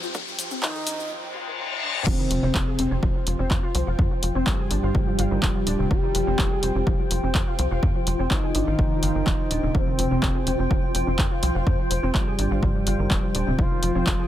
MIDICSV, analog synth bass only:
0, 0, Header, 1, 2, 480
1, 0, Start_track
1, 0, Tempo, 480000
1, 147, Time_signature, 4, 2, 24, 8
1, 14275, End_track
2, 0, Start_track
2, 0, Title_t, "Analog synth bass"
2, 0, Program_c, 0, 38
2, 2067, Note_on_c, 0, 29, 104
2, 2160, Note_off_c, 0, 29, 0
2, 2306, Note_on_c, 0, 29, 93
2, 2400, Note_off_c, 0, 29, 0
2, 2431, Note_on_c, 0, 29, 84
2, 2518, Note_off_c, 0, 29, 0
2, 2547, Note_on_c, 0, 29, 104
2, 2640, Note_off_c, 0, 29, 0
2, 2787, Note_on_c, 0, 29, 94
2, 2880, Note_off_c, 0, 29, 0
2, 2912, Note_on_c, 0, 29, 83
2, 2998, Note_off_c, 0, 29, 0
2, 3027, Note_on_c, 0, 29, 101
2, 3120, Note_off_c, 0, 29, 0
2, 3267, Note_on_c, 0, 29, 96
2, 3360, Note_off_c, 0, 29, 0
2, 3392, Note_on_c, 0, 29, 81
2, 3507, Note_on_c, 0, 41, 103
2, 3522, Note_off_c, 0, 29, 0
2, 3600, Note_off_c, 0, 41, 0
2, 3748, Note_on_c, 0, 36, 97
2, 3841, Note_off_c, 0, 36, 0
2, 3872, Note_on_c, 0, 29, 80
2, 3958, Note_off_c, 0, 29, 0
2, 3987, Note_on_c, 0, 41, 101
2, 4081, Note_off_c, 0, 41, 0
2, 4228, Note_on_c, 0, 29, 91
2, 4321, Note_off_c, 0, 29, 0
2, 4352, Note_on_c, 0, 29, 83
2, 4438, Note_off_c, 0, 29, 0
2, 4467, Note_on_c, 0, 32, 104
2, 4560, Note_off_c, 0, 32, 0
2, 4707, Note_on_c, 0, 32, 92
2, 4800, Note_off_c, 0, 32, 0
2, 4832, Note_on_c, 0, 32, 81
2, 4918, Note_off_c, 0, 32, 0
2, 4948, Note_on_c, 0, 31, 104
2, 5040, Note_off_c, 0, 31, 0
2, 5187, Note_on_c, 0, 31, 91
2, 5280, Note_off_c, 0, 31, 0
2, 5312, Note_on_c, 0, 31, 82
2, 5398, Note_off_c, 0, 31, 0
2, 5428, Note_on_c, 0, 27, 106
2, 5521, Note_off_c, 0, 27, 0
2, 5667, Note_on_c, 0, 27, 96
2, 5760, Note_off_c, 0, 27, 0
2, 5792, Note_on_c, 0, 27, 84
2, 5878, Note_off_c, 0, 27, 0
2, 5908, Note_on_c, 0, 29, 103
2, 6001, Note_off_c, 0, 29, 0
2, 6148, Note_on_c, 0, 29, 91
2, 6241, Note_off_c, 0, 29, 0
2, 6272, Note_on_c, 0, 29, 85
2, 6358, Note_off_c, 0, 29, 0
2, 6387, Note_on_c, 0, 29, 104
2, 6480, Note_off_c, 0, 29, 0
2, 6627, Note_on_c, 0, 29, 92
2, 6720, Note_off_c, 0, 29, 0
2, 6753, Note_on_c, 0, 29, 85
2, 6838, Note_off_c, 0, 29, 0
2, 6868, Note_on_c, 0, 29, 102
2, 6961, Note_off_c, 0, 29, 0
2, 7108, Note_on_c, 0, 29, 97
2, 7201, Note_off_c, 0, 29, 0
2, 7233, Note_on_c, 0, 29, 80
2, 7348, Note_on_c, 0, 41, 106
2, 7363, Note_off_c, 0, 29, 0
2, 7441, Note_off_c, 0, 41, 0
2, 7588, Note_on_c, 0, 36, 96
2, 7681, Note_off_c, 0, 36, 0
2, 7712, Note_on_c, 0, 29, 83
2, 7798, Note_off_c, 0, 29, 0
2, 7828, Note_on_c, 0, 41, 103
2, 7921, Note_off_c, 0, 41, 0
2, 8067, Note_on_c, 0, 29, 97
2, 8160, Note_off_c, 0, 29, 0
2, 8192, Note_on_c, 0, 29, 82
2, 8278, Note_off_c, 0, 29, 0
2, 8308, Note_on_c, 0, 32, 100
2, 8401, Note_off_c, 0, 32, 0
2, 8547, Note_on_c, 0, 32, 96
2, 8640, Note_off_c, 0, 32, 0
2, 8672, Note_on_c, 0, 32, 87
2, 8758, Note_off_c, 0, 32, 0
2, 8787, Note_on_c, 0, 31, 104
2, 8880, Note_off_c, 0, 31, 0
2, 9027, Note_on_c, 0, 31, 96
2, 9120, Note_off_c, 0, 31, 0
2, 9151, Note_on_c, 0, 31, 80
2, 9238, Note_off_c, 0, 31, 0
2, 9267, Note_on_c, 0, 27, 109
2, 9360, Note_off_c, 0, 27, 0
2, 9506, Note_on_c, 0, 27, 96
2, 9600, Note_off_c, 0, 27, 0
2, 9631, Note_on_c, 0, 27, 81
2, 9718, Note_off_c, 0, 27, 0
2, 9747, Note_on_c, 0, 29, 102
2, 9840, Note_off_c, 0, 29, 0
2, 9986, Note_on_c, 0, 29, 90
2, 10080, Note_off_c, 0, 29, 0
2, 10112, Note_on_c, 0, 29, 82
2, 10198, Note_off_c, 0, 29, 0
2, 10227, Note_on_c, 0, 29, 106
2, 10320, Note_off_c, 0, 29, 0
2, 10466, Note_on_c, 0, 29, 98
2, 10560, Note_off_c, 0, 29, 0
2, 10592, Note_on_c, 0, 29, 86
2, 10678, Note_off_c, 0, 29, 0
2, 10707, Note_on_c, 0, 29, 97
2, 10800, Note_off_c, 0, 29, 0
2, 10948, Note_on_c, 0, 29, 93
2, 11041, Note_off_c, 0, 29, 0
2, 11072, Note_on_c, 0, 29, 79
2, 11187, Note_on_c, 0, 41, 108
2, 11202, Note_off_c, 0, 29, 0
2, 11280, Note_off_c, 0, 41, 0
2, 11427, Note_on_c, 0, 36, 95
2, 11520, Note_off_c, 0, 36, 0
2, 11552, Note_on_c, 0, 29, 85
2, 11638, Note_off_c, 0, 29, 0
2, 11667, Note_on_c, 0, 41, 104
2, 11760, Note_off_c, 0, 41, 0
2, 11907, Note_on_c, 0, 29, 90
2, 12000, Note_off_c, 0, 29, 0
2, 12031, Note_on_c, 0, 29, 84
2, 12118, Note_off_c, 0, 29, 0
2, 12146, Note_on_c, 0, 32, 105
2, 12240, Note_off_c, 0, 32, 0
2, 12387, Note_on_c, 0, 32, 93
2, 12480, Note_off_c, 0, 32, 0
2, 12511, Note_on_c, 0, 32, 85
2, 12598, Note_off_c, 0, 32, 0
2, 12626, Note_on_c, 0, 31, 105
2, 12720, Note_off_c, 0, 31, 0
2, 12867, Note_on_c, 0, 31, 91
2, 12960, Note_off_c, 0, 31, 0
2, 12992, Note_on_c, 0, 31, 78
2, 13078, Note_off_c, 0, 31, 0
2, 13107, Note_on_c, 0, 27, 105
2, 13200, Note_off_c, 0, 27, 0
2, 13347, Note_on_c, 0, 27, 98
2, 13440, Note_off_c, 0, 27, 0
2, 13472, Note_on_c, 0, 27, 81
2, 13558, Note_off_c, 0, 27, 0
2, 13586, Note_on_c, 0, 29, 105
2, 13680, Note_off_c, 0, 29, 0
2, 13826, Note_on_c, 0, 29, 94
2, 13920, Note_off_c, 0, 29, 0
2, 13952, Note_on_c, 0, 29, 83
2, 14038, Note_off_c, 0, 29, 0
2, 14067, Note_on_c, 0, 29, 106
2, 14160, Note_off_c, 0, 29, 0
2, 14275, End_track
0, 0, End_of_file